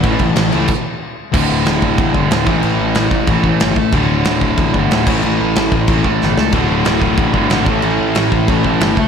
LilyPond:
<<
  \new Staff \with { instrumentName = "Distorted electric guitar" } { \time 4/4 \key a \mixolydian \tempo 4 = 185 <a, e a cis' e' a'>2 r2 | r1 | r1 | r1 |
r1 | <d, a, d a fis'>2~ <d, a, d a fis'>8 <d, a, d a fis'>8 <d, a, d a fis'>8 <a, e a cis' e' a'>8~ | <a, e a cis' e' a'>2 <a, e a cis' e' a'>8 <a, e a cis' e' a'>4 r8 | }
  \new Staff \with { instrumentName = "Distorted electric guitar" } { \clef bass \time 4/4 \key a \mixolydian <a, e a>8 <a, e>8 <a, e>8 <a, e a>8 r2 | <d, a, d>2.~ <d, a, d>8 <a, e a>8~ | <a, e a>2.~ <a, e a>8 r8 | <d, a, d>2.~ <d, a, d>8 <a, e a>8~ |
<a, e a>2.~ <a, e a>8 r8 | <d, a, d>2.~ <d, a, d>8 <a, e a>8~ | <a, e a>2.~ <a, e a>8 r8 | }
  \new Staff \with { instrumentName = "Distorted electric guitar" } { \clef bass \time 4/4 \key a \mixolydian <a, e a>8 <a, e>8 <a, e>8 <a, e a>8 r2 | <d, a, d>2~ <d, a, d>8 <d, a, d>8 <d, a, d>8 <a, e a>8~ | <a, e a>2 <a, e a>8 <a, e a>4 r8 | <d, a, d>2~ <d, a, d>8 <d, a, d>8 <d, a, d>8 <a, e a>8~ |
<a, e a>2 <a, e a>8 <a, e a>4 r8 | <d, a, d>2~ <d, a, d>8 <d, a, d>8 <d, a, d>8 <a, e a>8~ | <a, e a>2 <a, e a>8 <a, e a>4 r8 | }
  \new Staff \with { instrumentName = "Picked electric bass" } { \clef bass \time 4/4 \key a \mixolydian a,,8 a,,8 a,,8 cis,8 r2 | d,,8 d,,8 d,,8 d,,8 a,,8 g,,8 d,,8 a,,8 | a,,8 a,,8 a,,8 a,,8 a,,8 a,,8 g,,8 a,,8 | d,,8 d,,8 d,,8 d,,8 a,,8 g,,8 d,,8 a,,8 |
a,,8 a,,8 a,,8 a,,8 a,,8 a,,8 g,,8 cis,8 | d,,8 d,,8 d,,8 d,,8 a,,8 g,,8 gis,,8 a,,8 | a,,8 a,,8 a,,8 a,,8 a,,8 a,,8 g,,8 cis,8 | }
  \new DrumStaff \with { instrumentName = "Drums" } \drummode { \time 4/4 <cymc bd>8 <cymc bd>8 <cymc sn>8 cymc8 <cymc bd>4 r4 | <cymc bd>4 <cymc sn>8 bd8 <cymc bd>8 bd8 <cymc sn>8 bd8 | cymc4 <cymc sn>8 bd8 <cymc bd>8 bd8 <cymc sn>8 bd8 | <cymc bd>4 <cymc sn>8 bd8 <cymc bd>8 bd8 <cymc sn>8 <cymc bd>8 |
cymc4 <cymc sn>8 bd8 <cymc bd>8 bd8 sn8 sn8 | <cymc bd>4 <cymc sn>8 bd8 <cymc bd>8 bd8 <cymc sn>8 bd8 | cymc4 <cymc sn>8 bd8 <cymc bd>8 bd8 <cymc sn>8 bd8 | }
>>